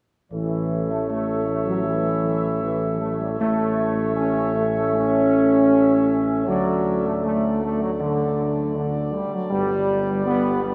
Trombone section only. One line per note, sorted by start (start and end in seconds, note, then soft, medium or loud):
0.32 0.86 E3 medium
0.91 1.09 A3 medium
1.10 1.46 A3 medium
1.48 1.66 A3 medium
1.67 1.85 F#3 medium
1.85 2.61 E3 medium
2.62 2.99 E3 medium
3.01 3.19 A3 medium
3.20 3.29 G3 medium
3.39 4.13 A3 medium
4.17 4.53 C#4 medium
4.55 4.64 A3 medium
4.76 4.94 A3 medium
4.94 6.44 C#4 medium
6.47 7.01 F#3 medium
7.05 7.13 A3 medium
7.24 7.60 A3 medium
7.63 7.80 A3 medium
7.82 7.90 F#3 medium
8.00 8.72 D3 medium
8.76 9.11 D3 medium
9.13 9.32 G3 medium
9.33 9.52 F#3 medium
9.50 10.22 G3 medium
10.26 10.61 B3 medium
10.63 10.72 G3 medium